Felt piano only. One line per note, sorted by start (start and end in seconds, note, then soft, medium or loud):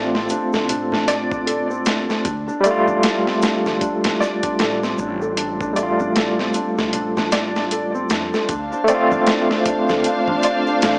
0.00 0.53 A3 medium
0.00 0.14 C4 medium
0.00 0.30 D4 medium
0.00 1.46 A4 medium
0.00 1.08 D5 medium
0.14 0.29 C4 medium
0.30 0.52 D4 medium
0.53 0.68 A3 medium
0.69 0.91 D4 medium
0.92 1.07 D4 medium
1.08 1.30 D5 loud
1.31 1.46 D4 medium
1.46 1.68 A4 medium
1.70 1.85 C4 medium
1.86 2.08 D4 medium
2.09 2.24 A3 medium
2.25 2.46 D4 medium
2.48 2.62 D4 medium
2.63 2.86 D5 loud
2.86 3.02 D4 medium
3.03 3.24 A4 medium
3.26 3.40 C4 medium
3.42 3.65 D4 medium
3.65 3.80 A3 medium
3.81 4.03 D4 medium
4.04 4.19 D4 medium
4.20 4.42 D5 medium
4.44 4.59 D4 medium
4.60 4.80 A4 medium
4.83 4.97 C4 medium
4.99 5.21 D4 medium
5.22 5.36 A3 medium
5.37 5.59 D4 medium
5.61 5.75 D4 medium
5.76 5.98 D5 medium
5.99 6.14 D4 medium
6.15 6.36 A4 medium
6.39 6.53 C4 medium
6.55 6.77 D4 medium
6.78 6.92 A3 medium
6.94 7.15 D4 medium
7.17 7.31 D4 medium
7.32 7.54 D5 medium
7.56 7.71 D4 medium
7.72 7.92 A4 medium
7.94 8.09 C4 medium
8.11 8.32 D4 medium
8.34 8.48 A3 medium
8.49 8.71 D4 medium
8.73 8.87 D4 medium
8.88 9.10 D5 loud
9.11 9.26 D4 medium
9.27 9.48 A4 medium
9.50 9.64 C4 medium
9.66 9.88 D4 medium
9.89 10.03 A3 medium
10.05 10.27 D4 medium
10.29 10.43 D4 medium
10.44 10.66 D5 medium
10.68 10.82 D4 medium
10.83 10.99 A4 medium